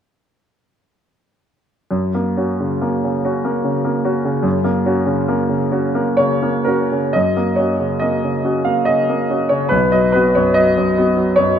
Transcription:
1.91 4.41 F#2 soft
2.15 2.50 A#3 soft
2.37 2.57 C#4 soft
2.37 2.57 F#4 soft
2.60 2.95 C#3 soft
2.82 3.16 A#3 soft
3.04 3.37 C#3 soft
3.25 3.43 C#4 soft
3.25 3.43 F#4 soft
3.45 3.77 A#3 soft
3.64 3.97 C#3 soft
3.85 4.17 A#3 soft
4.04 4.23 C#4 soft
4.04 4.23 F#4 soft
4.25 4.57 C#3 soft
4.43 7.09 F#2 soft
4.64 4.98 A#3 soft
4.86 5.04 C#4 soft
4.86 5.05 F#4 soft
5.06 5.40 C#3 soft
5.28 5.63 A#3 soft
5.49 5.85 C#3 soft
5.71 5.92 C#4 soft
5.71 5.92 F#4 soft
5.95 6.32 A#3 soft
6.17 6.57 C#3 soft
6.17 6.66 C#5 medium
6.43 6.82 A#3 soft
6.64 6.89 C#4 soft
6.64 6.89 F#4 soft
6.64 7.13 A#4 soft
6.92 7.14 C#3 soft
7.13 9.70 F#2 soft
7.13 7.58 D#5 medium
7.37 7.72 A#3 soft
7.56 7.78 C#4 soft
7.56 7.79 F#4 soft
7.56 8.01 C#5 soft
7.80 8.15 C#3 soft
8.00 8.36 A#3 soft
8.00 8.65 D#5 medium
8.24 8.58 C#3 soft
8.44 8.64 C#4 soft
8.44 8.64 F#4 soft
8.65 9.00 A#3 soft
8.65 8.87 F5 medium
8.85 9.22 C#3 soft
8.85 9.50 D#5 medium
9.09 9.43 A#3 soft
9.30 9.49 C#4 soft
9.30 9.50 F#4 soft
9.49 9.73 C#3 soft
9.49 9.72 C#5 medium
9.69 11.59 B1 soft
9.69 9.92 B4 medium
9.92 10.27 F#3 soft
9.92 10.14 D#5 medium
10.12 10.33 B3 soft
10.12 10.34 F#4 soft
10.12 10.34 B4 medium
10.35 10.68 F#2 soft
10.35 10.55 C#5 medium
10.54 10.88 F#3 soft
10.54 11.36 D#5 medium
10.77 11.09 F#2 soft
10.97 11.15 B3 soft
10.97 11.15 F#4 soft
11.17 11.49 F#3 soft
11.36 11.59 F#2 soft
11.36 11.59 C#5 medium

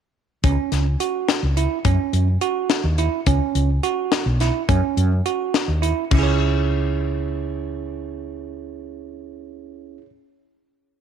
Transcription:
0.44 0.55 C#2 medium
0.44 0.86 C#4 medium
0.44 kick loud
0.44 closed hi-hat medium
0.72 0.95 C#2 medium
0.72 snare soft
0.72 closed hi-hat medium
1.00 1.42 F#4 medium
1.00 closed hi-hat medium
1.29 snare loud
1.29 closed hi-hat medium
1.43 1.66 C#2 medium
1.57 1.78 E4 medium
1.57 closed hi-hat medium
1.85 1.96 F#2 medium
1.85 2.27 C#4 medium
1.85 kick loud
1.85 closed hi-hat medium
2.13 2.36 F#2 medium
2.13 closed hi-hat medium
2.41 2.83 F#4 medium
2.41 closed hi-hat medium
2.70 snare loud
2.70 closed hi-hat medium
2.84 3.07 D#2 medium
2.98 3.19 E4 medium
2.98 closed hi-hat medium
3.26 3.38 C#2 medium
3.26 3.69 C#4 medium
3.26 kick loud
3.26 closed hi-hat medium
3.55 3.78 C#2 medium
3.55 closed hi-hat medium
3.83 4.26 F#4 medium
3.83 closed hi-hat medium
4.12 snare loud
4.12 closed hi-hat medium
4.26 4.49 B1 medium
4.40 4.62 E4 medium
4.40 snare soft
4.40 closed hi-hat medium
4.69 4.80 F#2 medium
4.69 5.11 C#4 medium
4.69 kick loud
4.69 closed hi-hat medium
4.97 5.20 F#2 medium
4.97 closed hi-hat medium
5.26 5.68 F#4 medium
5.26 closed hi-hat medium
5.54 snare loud
5.54 closed hi-hat medium
5.68 5.91 D#2 medium
5.82 6.04 E4 medium
5.82 closed hi-hat medium
6.11 9.98 C#2 medium
6.11 9.97 C#4 medium
6.11 10.01 E4 medium
6.11 kick loud
6.11 crash medium
6.19 10.05 G#4 medium
6.19 10.09 C#5 medium

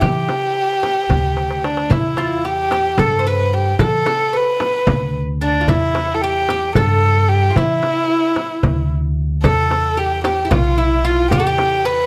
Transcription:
0.01 0.27 E3 medium
0.01 1.96 G4 medium
0.01 1.66 G4 medium
0.01 frame drum medium
0.01 darbuka dum medium
0.29 darbuka tek medium
0.29 frame drum medium
0.83 darbuka tek medium
0.83 frame drum medium
1.10 1.87 D2 medium
1.10 frame drum medium
1.10 darbuka dum medium
1.37 darbuka tek soft
1.51 darbuka ka medium
1.64 1.93 D4 medium
1.64 darbuka tek medium
1.77 darbuka ka medium
1.90 2.94 E2 medium
1.90 2.17 E4 medium
1.90 2.47 E4 medium
1.90 frame drum medium
1.90 darbuka dum medium
2.17 2.45 F4 medium
2.17 darbuka tek medium
2.17 frame drum medium
2.45 2.71 G4 medium
2.45 3.01 G4 medium
2.71 2.99 G4 medium
2.71 darbuka tek medium
2.71 frame drum medium
2.98 3.75 G2 medium
2.98 3.19 A4 medium
2.98 3.29 A4 medium
2.98 frame drum medium
2.98 darbuka dum medium
3.19 3.26 C5 medium
3.27 3.79 B4 medium
3.27 3.55 B4 medium
3.54 3.80 G4 medium
3.79 4.04 E3 medium
3.79 4.05 A4 medium
3.79 4.38 A4 medium
3.79 frame drum medium
3.79 darbuka dum medium
4.06 4.31 A4 medium
4.06 darbuka tek medium
4.06 frame drum medium
4.33 5.10 B4 medium
4.33 5.16 B4 medium
4.60 darbuka tek medium
4.60 frame drum medium
4.87 5.64 D2 medium
4.87 frame drum medium
4.87 darbuka dum medium
5.41 5.60 D4 medium
5.41 5.70 D4 medium
5.61 5.68 F4 medium
5.68 6.72 E2 medium
5.68 6.18 E4 medium
5.68 6.16 E4 medium
5.68 darbuka dum medium
5.68 frame drum medium
5.95 darbuka tek medium
5.95 frame drum medium
6.15 6.23 A4 medium
6.22 6.75 G4 medium
6.22 6.49 G4 medium
6.49 6.76 G4 medium
6.49 darbuka tek medium
6.49 frame drum medium
6.75 7.52 G2 medium
6.75 7.31 A4 medium
6.75 7.50 A4 medium
6.75 frame drum medium
6.75 darbuka dum medium
7.29 7.58 G4 medium
7.50 7.57 F4 soft
7.56 7.81 E3 medium
7.56 8.91 E4 medium
7.56 8.87 E4 medium
7.56 frame drum medium
7.56 darbuka dum medium
7.83 darbuka tek soft
7.83 frame drum medium
8.10 darbuka ka soft
8.36 darbuka tek medium
8.36 frame drum medium
8.63 9.40 D2 medium
8.63 frame drum medium
8.63 darbuka dum medium
9.44 10.47 E2 medium
9.44 10.00 A4 medium
9.44 9.97 A4 medium
9.44 frame drum medium
9.44 darbuka dum medium
9.71 darbuka tek medium
9.71 frame drum medium
9.97 10.24 G4 medium
10.24 10.54 G4 medium
10.24 10.44 G4 medium
10.24 darbuka tek medium
10.24 frame drum medium
10.45 10.50 E4 medium
10.51 11.28 B1 medium
10.51 10.77 F4 medium
10.51 10.80 F4 medium
10.51 darbuka dum medium
10.51 frame drum medium
10.78 11.04 E4 medium
10.78 11.07 E4 medium
11.05 11.32 F4 medium
11.05 11.31 F4 medium
11.31 12.06 E2 medium
11.31 11.87 G4 medium
11.31 11.39 G4 medium
11.31 darbuka dum medium
11.31 frame drum medium
11.40 11.46 A4 medium
11.47 11.85 G4 medium
11.58 darbuka tek medium
11.58 frame drum medium
11.85 12.06 B4 medium
11.85 12.06 B4 loud

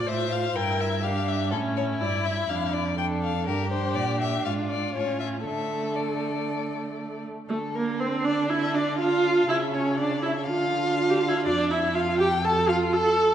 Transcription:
0.00 0.57 F4 medium
0.06 0.54 A2 medium
0.06 0.57 C5 medium
0.06 0.33 E5 medium
0.32 0.57 F5 medium
0.55 1.54 G2 medium
0.55 1.05 E4 medium
0.55 1.03 A#4 medium
0.55 0.82 G5 medium
0.80 1.05 E5 medium
1.03 1.53 D4 medium
1.03 1.54 G4 medium
1.03 1.30 F5 medium
1.28 1.51 E5 medium
1.51 2.03 A2 medium
1.51 2.02 C#4 medium
1.51 2.97 E4 medium
1.51 1.59 A4 medium
1.76 1.84 C#5 medium
2.01 2.49 G2 medium
2.01 2.51 E4 medium
2.01 2.26 D5 medium
2.25 2.50 E5 medium
2.49 3.48 F2 medium
2.49 2.97 D4 soft
2.49 2.75 F5 medium
2.73 2.97 D5 medium
2.97 3.46 D4 medium
2.97 3.48 A4 medium
2.97 3.06 G5 medium
3.22 3.46 F5 medium
3.46 3.96 G2 medium
3.46 4.96 D4 medium
3.46 4.46 G4 medium
3.46 3.71 A#4 medium
3.72 3.97 C5 medium
3.95 4.44 A#2 medium
3.95 4.20 D5 medium
4.21 4.44 E5 medium
4.44 4.93 G#2 medium
4.44 5.45 F4 medium
4.44 4.53 F5 medium
4.70 4.94 D5 medium
4.94 5.46 A2 medium
4.94 5.45 C#4 medium
4.94 5.19 C#5 medium
5.20 5.28 E5 medium
5.45 7.29 D3 medium
5.45 7.25 A3 soft
5.45 7.20 A4 medium
5.45 5.97 E5 medium
5.96 7.24 D5 medium
7.49 9.44 D3 medium
7.49 7.57 A3 medium
7.49 11.41 A4 medium
7.49 7.76 A4 medium
7.75 8.01 A#3 medium
7.75 8.02 A#4 medium
8.00 8.26 C4 medium
8.00 8.24 C5 medium
8.24 8.51 D4 medium
8.24 8.49 D5 medium
8.49 8.75 E4 medium
8.49 8.77 E5 medium
8.74 8.98 D4 medium
8.74 8.99 D5 medium
8.99 9.47 F4 medium
8.99 9.51 F5 medium
9.48 10.49 C#3 medium
9.48 9.56 E4 medium
9.48 9.76 E5 medium
9.73 9.97 C#4 medium
9.73 9.99 C#5 medium
9.98 10.21 D4 medium
9.98 10.24 D5 medium
10.22 10.30 E4 medium
10.22 10.45 E5 medium
10.46 11.47 D3 medium
10.46 11.11 F4 medium
10.46 11.43 F5 medium
11.10 11.20 G4 medium
11.19 11.29 F4 medium
11.28 11.38 E4 medium
11.37 11.47 F4 medium
11.46 13.35 F2 medium
11.46 11.72 D4 medium
11.46 13.35 A4 medium
11.46 11.69 D5 medium
11.70 11.95 E4 medium
11.70 11.96 E5 medium
11.94 12.19 F4 medium
11.94 12.19 F5 medium
12.19 12.27 G4 medium
12.19 12.46 G5 medium
12.43 12.70 A4 medium
12.43 12.68 A5 medium
12.68 12.94 F4 medium
12.68 12.77 F5 medium
12.93 13.35 A4 loud
12.93 13.35 A5 medium

